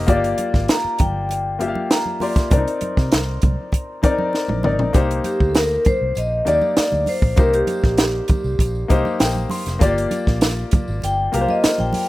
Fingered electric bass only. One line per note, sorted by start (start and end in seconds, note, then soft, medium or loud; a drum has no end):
0.08 0.32 G1 loud
0.54 0.66 G#1 medium
0.85 muted fingered electric bass stroke soft
1.00 1.72 G1 medium
2.52 2.64 C2 loud
2.82 muted fingered electric bass stroke soft
2.97 3.09 C3 medium
3.13 3.37 C2 medium
3.43 3.55 C2 medium
4.50 4.62 A#1 medium
4.65 4.77 G#1 medium
4.81 4.92 A#1 medium
4.95 5.19 C2 loud
5.41 5.77 D2 medium
5.87 muted fingered electric bass stroke soft
6.01 6.13 C2 medium
6.17 6.41 A#1 medium
6.47 6.59 D#2 medium
6.78 muted fingered electric bass stroke soft
6.92 7.04 D2 medium
7.23 7.35 A#1 medium
7.38 7.62 C2 loud
7.84 8.20 A#1 medium
8.30 muted fingered electric bass stroke soft
8.44 8.56 C2 medium
8.59 8.83 A#1 loud
8.90 9.02 C2 medium
9.21 9.45 A#1 medium
9.67 9.78 F1 medium
9.82 10.05 G1 medium
10.28 10.63 A#1 medium
10.73 muted fingered electric bass stroke soft
10.88 11.00 G#1 medium
11.04 11.27 G1 medium
11.34 11.46 C2 medium
11.65 muted fingered electric bass stroke soft
11.80 11.91 A#1 medium